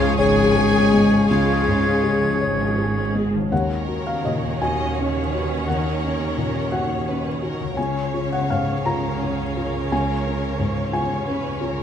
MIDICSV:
0, 0, Header, 1, 12, 480
1, 0, Start_track
1, 0, Tempo, 736196
1, 842, Time_signature, 6, 3, 24, 8
1, 3241, Tempo, 699301
1, 5161, Tempo, 724638
1, 6121, Tempo, 687285
1, 7945, End_track
2, 0, Start_track
2, 0, Title_t, "Flute"
2, 0, Program_c, 0, 73
2, 0, Note_on_c, 0, 92, 77
2, 115, Note_off_c, 0, 92, 0
2, 122, Note_on_c, 0, 92, 68
2, 830, Note_off_c, 0, 92, 0
2, 846, Note_on_c, 0, 92, 67
2, 2054, Note_off_c, 0, 92, 0
2, 7945, End_track
3, 0, Start_track
3, 0, Title_t, "Violin section"
3, 0, Program_c, 1, 48
3, 0, Note_on_c, 1, 77, 106
3, 113, Note_on_c, 1, 80, 106
3, 116, Note_off_c, 1, 77, 0
3, 825, Note_off_c, 1, 80, 0
3, 842, Note_on_c, 1, 77, 78
3, 1569, Note_off_c, 1, 77, 0
3, 2286, Note_on_c, 1, 78, 50
3, 5131, Note_off_c, 1, 78, 0
3, 5162, Note_on_c, 1, 77, 45
3, 7945, Note_off_c, 1, 77, 0
3, 7945, End_track
4, 0, Start_track
4, 0, Title_t, "Oboe"
4, 0, Program_c, 2, 68
4, 0, Note_on_c, 2, 73, 80
4, 113, Note_off_c, 2, 73, 0
4, 117, Note_on_c, 2, 73, 71
4, 827, Note_off_c, 2, 73, 0
4, 837, Note_on_c, 2, 73, 65
4, 2049, Note_off_c, 2, 73, 0
4, 7945, End_track
5, 0, Start_track
5, 0, Title_t, "Violin section"
5, 0, Program_c, 3, 48
5, 0, Note_on_c, 3, 65, 99
5, 117, Note_off_c, 3, 65, 0
5, 117, Note_on_c, 3, 68, 89
5, 827, Note_off_c, 3, 68, 0
5, 850, Note_on_c, 3, 65, 67
5, 1573, Note_off_c, 3, 65, 0
5, 2304, Note_on_c, 3, 70, 58
5, 2989, Note_off_c, 3, 70, 0
5, 3012, Note_on_c, 3, 75, 57
5, 3243, Note_off_c, 3, 75, 0
5, 3251, Note_on_c, 3, 73, 53
5, 3483, Note_on_c, 3, 71, 56
5, 3486, Note_off_c, 3, 73, 0
5, 3721, Note_off_c, 3, 71, 0
5, 3721, Note_on_c, 3, 70, 61
5, 4424, Note_off_c, 3, 70, 0
5, 4444, Note_on_c, 3, 73, 56
5, 4683, Note_off_c, 3, 73, 0
5, 4691, Note_on_c, 3, 71, 52
5, 4926, Note_off_c, 3, 71, 0
5, 4928, Note_on_c, 3, 70, 52
5, 5161, Note_off_c, 3, 70, 0
5, 5171, Note_on_c, 3, 73, 62
5, 5882, Note_on_c, 3, 70, 51
5, 5891, Note_off_c, 3, 73, 0
5, 6116, Note_on_c, 3, 68, 49
5, 6119, Note_off_c, 3, 70, 0
5, 6356, Note_on_c, 3, 70, 61
5, 6362, Note_off_c, 3, 68, 0
5, 7317, Note_on_c, 3, 73, 57
5, 7319, Note_off_c, 3, 70, 0
5, 7554, Note_off_c, 3, 73, 0
5, 7560, Note_on_c, 3, 71, 57
5, 7794, Note_on_c, 3, 70, 58
5, 7795, Note_off_c, 3, 71, 0
5, 7945, Note_off_c, 3, 70, 0
5, 7945, End_track
6, 0, Start_track
6, 0, Title_t, "Clarinet"
6, 0, Program_c, 4, 71
6, 0, Note_on_c, 4, 68, 74
6, 109, Note_off_c, 4, 68, 0
6, 130, Note_on_c, 4, 68, 76
6, 727, Note_off_c, 4, 68, 0
6, 838, Note_on_c, 4, 68, 61
6, 2049, Note_off_c, 4, 68, 0
6, 7945, End_track
7, 0, Start_track
7, 0, Title_t, "Felt piano"
7, 0, Program_c, 5, 0
7, 0, Control_c, 5, 64, 127
7, 0, Note_on_c, 5, 37, 78
7, 0, Note_on_c, 5, 44, 55
7, 0, Note_on_c, 5, 68, 59
7, 121, Note_on_c, 5, 73, 60
7, 269, Note_off_c, 5, 68, 0
7, 365, Note_on_c, 5, 68, 61
7, 503, Note_off_c, 5, 73, 0
7, 610, Note_on_c, 5, 56, 49
7, 749, Note_off_c, 5, 68, 0
7, 820, Note_off_c, 5, 37, 0
7, 852, Note_on_c, 5, 37, 56
7, 856, Control_c, 5, 64, 0
7, 861, Note_off_c, 5, 44, 0
7, 975, Control_c, 5, 64, 127
7, 993, Note_off_c, 5, 56, 0
7, 1091, Note_on_c, 5, 44, 41
7, 1329, Note_on_c, 5, 68, 51
7, 1475, Note_off_c, 5, 44, 0
7, 1572, Note_on_c, 5, 73, 51
7, 1716, Note_off_c, 5, 68, 0
7, 1815, Note_on_c, 5, 68, 43
7, 1959, Note_off_c, 5, 73, 0
7, 2052, Note_on_c, 5, 56, 40
7, 2200, Note_off_c, 5, 68, 0
7, 2271, Note_off_c, 5, 37, 0
7, 2291, Note_off_c, 5, 56, 0
7, 2294, Note_on_c, 5, 39, 52
7, 2295, Note_on_c, 5, 78, 65
7, 2304, Control_c, 5, 64, 0
7, 2399, Control_c, 5, 64, 127
7, 2533, Note_on_c, 5, 66, 34
7, 2625, Note_off_c, 5, 78, 0
7, 2652, Note_on_c, 5, 77, 62
7, 2763, Note_off_c, 5, 77, 0
7, 2771, Note_on_c, 5, 75, 64
7, 2779, Note_on_c, 5, 46, 39
7, 2917, Note_off_c, 5, 66, 0
7, 2993, Note_off_c, 5, 75, 0
7, 3009, Note_on_c, 5, 66, 45
7, 3010, Note_on_c, 5, 80, 76
7, 3155, Note_off_c, 5, 46, 0
7, 3251, Note_on_c, 5, 61, 40
7, 3386, Note_off_c, 5, 66, 0
7, 3499, Note_on_c, 5, 66, 36
7, 3630, Note_off_c, 5, 61, 0
7, 3693, Note_off_c, 5, 39, 0
7, 3693, Note_off_c, 5, 80, 0
7, 3726, Note_on_c, 5, 78, 54
7, 3733, Control_c, 5, 64, 0
7, 3734, Note_on_c, 5, 39, 46
7, 3854, Control_c, 5, 64, 127
7, 3871, Note_off_c, 5, 66, 0
7, 3977, Note_on_c, 5, 61, 38
7, 4208, Note_on_c, 5, 46, 39
7, 4351, Note_off_c, 5, 61, 0
7, 4414, Note_off_c, 5, 78, 0
7, 4441, Note_on_c, 5, 66, 44
7, 4441, Note_on_c, 5, 78, 66
7, 4589, Note_off_c, 5, 46, 0
7, 4696, Note_on_c, 5, 61, 42
7, 4826, Note_off_c, 5, 66, 0
7, 4924, Note_on_c, 5, 66, 37
7, 5073, Note_off_c, 5, 61, 0
7, 5136, Note_off_c, 5, 78, 0
7, 5142, Note_off_c, 5, 39, 0
7, 5164, Note_off_c, 5, 66, 0
7, 5164, Note_on_c, 5, 80, 61
7, 5170, Note_on_c, 5, 37, 48
7, 5174, Control_c, 5, 64, 0
7, 5280, Control_c, 5, 64, 127
7, 5406, Note_on_c, 5, 65, 35
7, 5498, Note_off_c, 5, 80, 0
7, 5529, Note_on_c, 5, 78, 62
7, 5639, Note_off_c, 5, 78, 0
7, 5647, Note_on_c, 5, 77, 70
7, 5651, Note_on_c, 5, 44, 37
7, 5793, Note_off_c, 5, 65, 0
7, 5871, Note_off_c, 5, 77, 0
7, 5881, Note_on_c, 5, 65, 44
7, 5882, Note_on_c, 5, 82, 71
7, 6032, Note_off_c, 5, 44, 0
7, 6126, Note_on_c, 5, 61, 43
7, 6265, Note_off_c, 5, 65, 0
7, 6368, Note_on_c, 5, 65, 38
7, 6513, Note_off_c, 5, 61, 0
7, 6578, Note_off_c, 5, 82, 0
7, 6584, Note_off_c, 5, 37, 0
7, 6612, Note_on_c, 5, 37, 51
7, 6613, Note_on_c, 5, 80, 72
7, 6621, Control_c, 5, 64, 0
7, 6742, Control_c, 5, 64, 127
7, 6754, Note_off_c, 5, 65, 0
7, 6852, Note_on_c, 5, 61, 37
7, 7081, Note_on_c, 5, 44, 38
7, 7230, Note_off_c, 5, 61, 0
7, 7298, Note_off_c, 5, 80, 0
7, 7319, Note_on_c, 5, 65, 43
7, 7320, Note_on_c, 5, 80, 73
7, 7464, Note_off_c, 5, 44, 0
7, 7559, Note_on_c, 5, 61, 43
7, 7703, Note_off_c, 5, 65, 0
7, 7792, Note_on_c, 5, 65, 41
7, 7944, Note_off_c, 5, 61, 0
7, 7945, Note_off_c, 5, 37, 0
7, 7945, Note_off_c, 5, 65, 0
7, 7945, Note_off_c, 5, 80, 0
7, 7945, End_track
8, 0, Start_track
8, 0, Title_t, "Harp"
8, 0, Program_c, 6, 46
8, 0, Note_on_c, 6, 49, 73
8, 0, Note_on_c, 6, 61, 63
8, 0, Note_on_c, 6, 65, 60
8, 0, Note_on_c, 6, 68, 54
8, 1856, Note_off_c, 6, 49, 0
8, 1882, Note_off_c, 6, 61, 0
8, 1912, Note_off_c, 6, 65, 0
8, 1943, Note_off_c, 6, 68, 0
8, 2181, Note_on_c, 6, 51, 42
8, 2208, Note_on_c, 6, 61, 38
8, 2238, Note_on_c, 6, 63, 38
8, 2267, Note_on_c, 6, 66, 37
8, 4802, Note_off_c, 6, 51, 0
8, 4831, Note_off_c, 6, 61, 0
8, 4863, Note_off_c, 6, 63, 0
8, 4893, Note_off_c, 6, 66, 0
8, 5044, Note_on_c, 6, 49, 44
8, 5077, Note_on_c, 6, 61, 32
8, 5108, Note_on_c, 6, 65, 36
8, 5139, Note_on_c, 6, 68, 36
8, 7714, Note_off_c, 6, 49, 0
8, 7748, Note_off_c, 6, 61, 0
8, 7779, Note_off_c, 6, 65, 0
8, 7811, Note_off_c, 6, 68, 0
8, 7921, Note_on_c, 6, 47, 50
8, 7945, Note_off_c, 6, 47, 0
8, 7945, End_track
9, 0, Start_track
9, 0, Title_t, "French horn section"
9, 0, Program_c, 7, 60
9, 0, Note_on_c, 7, 56, 81
9, 0, Note_on_c, 7, 61, 78
9, 94, Note_off_c, 7, 61, 0
9, 95, Note_off_c, 7, 56, 0
9, 124, Note_on_c, 7, 61, 69
9, 125, Note_on_c, 7, 56, 79
9, 830, Note_off_c, 7, 61, 0
9, 831, Note_off_c, 7, 56, 0
9, 848, Note_on_c, 7, 61, 57
9, 851, Note_on_c, 7, 56, 62
9, 2055, Note_off_c, 7, 61, 0
9, 2056, Note_off_c, 7, 56, 0
9, 7945, End_track
10, 0, Start_track
10, 0, Title_t, "Viola section"
10, 0, Program_c, 8, 48
10, 0, Note_on_c, 8, 68, 76
10, 9, Note_on_c, 8, 53, 67
10, 122, Note_off_c, 8, 53, 0
10, 127, Note_on_c, 8, 49, 61
10, 241, Note_off_c, 8, 49, 0
10, 243, Note_on_c, 8, 53, 68
10, 357, Note_on_c, 8, 56, 62
10, 360, Note_off_c, 8, 53, 0
10, 478, Note_off_c, 8, 56, 0
10, 482, Note_on_c, 8, 61, 57
10, 601, Note_off_c, 8, 61, 0
10, 604, Note_on_c, 8, 56, 64
10, 723, Note_off_c, 8, 56, 0
10, 723, Note_on_c, 8, 53, 57
10, 842, Note_on_c, 8, 49, 59
10, 843, Note_off_c, 8, 53, 0
10, 955, Note_off_c, 8, 49, 0
10, 966, Note_on_c, 8, 53, 58
10, 1082, Note_on_c, 8, 56, 51
10, 1086, Note_off_c, 8, 53, 0
10, 1204, Note_off_c, 8, 56, 0
10, 1210, Note_on_c, 8, 61, 50
10, 1322, Note_on_c, 8, 56, 54
10, 1329, Note_off_c, 8, 61, 0
10, 1445, Note_off_c, 8, 56, 0
10, 1445, Note_on_c, 8, 53, 49
10, 1562, Note_on_c, 8, 49, 49
10, 1567, Note_off_c, 8, 53, 0
10, 1687, Note_off_c, 8, 49, 0
10, 1690, Note_on_c, 8, 53, 52
10, 1812, Note_off_c, 8, 53, 0
10, 1815, Note_on_c, 8, 56, 47
10, 1934, Note_on_c, 8, 61, 46
10, 1935, Note_off_c, 8, 56, 0
10, 2050, Note_on_c, 8, 56, 50
10, 2055, Note_off_c, 8, 61, 0
10, 2129, Note_off_c, 8, 68, 0
10, 2165, Note_on_c, 8, 53, 44
10, 2172, Note_off_c, 8, 56, 0
10, 2286, Note_on_c, 8, 73, 52
10, 2287, Note_off_c, 8, 53, 0
10, 2290, Note_on_c, 8, 61, 54
10, 5131, Note_off_c, 8, 73, 0
10, 5133, Note_off_c, 8, 61, 0
10, 5156, Note_on_c, 8, 61, 46
10, 5158, Note_on_c, 8, 73, 53
10, 7945, Note_off_c, 8, 61, 0
10, 7945, Note_off_c, 8, 73, 0
10, 7945, End_track
11, 0, Start_track
11, 0, Title_t, "Cello section"
11, 0, Program_c, 10, 48
11, 114, Note_on_c, 10, 44, 82
11, 718, Note_off_c, 10, 44, 0
11, 838, Note_on_c, 10, 49, 68
11, 1445, Note_off_c, 10, 49, 0
11, 1566, Note_on_c, 10, 44, 65
11, 2173, Note_off_c, 10, 44, 0
11, 2291, Note_on_c, 10, 51, 57
11, 5134, Note_off_c, 10, 51, 0
11, 5164, Note_on_c, 10, 49, 58
11, 7945, Note_off_c, 10, 49, 0
11, 7945, End_track
12, 0, Start_track
12, 0, Title_t, "Double bass section"
12, 0, Program_c, 11, 48
12, 119, Note_on_c, 11, 32, 82
12, 721, Note_off_c, 11, 32, 0
12, 845, Note_on_c, 11, 37, 66
12, 1449, Note_off_c, 11, 37, 0
12, 1568, Note_on_c, 11, 32, 64
12, 2174, Note_off_c, 11, 32, 0
12, 2298, Note_on_c, 11, 39, 56
12, 5137, Note_off_c, 11, 39, 0
12, 5169, Note_on_c, 11, 37, 49
12, 7945, Note_off_c, 11, 37, 0
12, 7945, End_track
0, 0, End_of_file